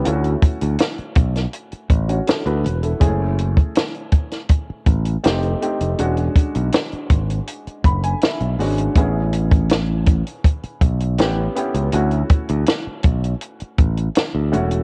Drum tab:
HH |xxxxxxxxxxxxxxxx|x-xxxxxxx-xxxxxx|xxxxxxxxxxxxxxox|x-xxx-xxxxxxx-xx|
SD |----o--o----o---|----o--o----o---|----o-------o---|----o-------o---|
BD |--o---o---o-----|o--o--o-o-o-----|--o---o---o-----|o--o--o-o-o-----|

HH |xxxxx-xxxxxxx-xx|
SD |----o-------o---|
BD |--o---o---o-----|